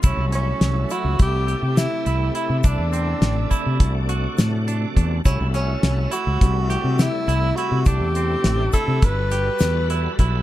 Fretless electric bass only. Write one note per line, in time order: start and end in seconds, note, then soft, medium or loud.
0.04 0.15 C2 medium
0.17 0.52 C2 medium
0.61 0.84 C2 medium
1.05 1.16 C#2 medium
1.20 1.54 C2 medium
1.62 1.86 C3 medium
2.06 2.29 C2 medium
2.50 2.61 C3 medium
2.64 2.76 C2 medium
2.79 3.13 E2 medium
3.21 3.45 A1 medium
3.66 3.78 C3 medium
3.80 4.26 C2 medium
4.39 4.84 A2 medium
4.97 5.19 E2 medium
5.25 5.37 C2 loud
5.41 5.75 C2 medium
5.83 6.06 C2 medium
6.27 6.38 C#2 medium
6.42 6.76 C2 loud
6.84 7.07 C3 medium
7.28 7.51 C2 medium
7.72 7.83 C3 medium
7.86 7.98 C2 loud
8.00 8.35 E2 medium
8.45 8.68 A1 medium
8.88 8.99 C3 medium
9.02 9.48 G1 loud
9.61 10.07 E2 loud
10.19 10.42 B1 medium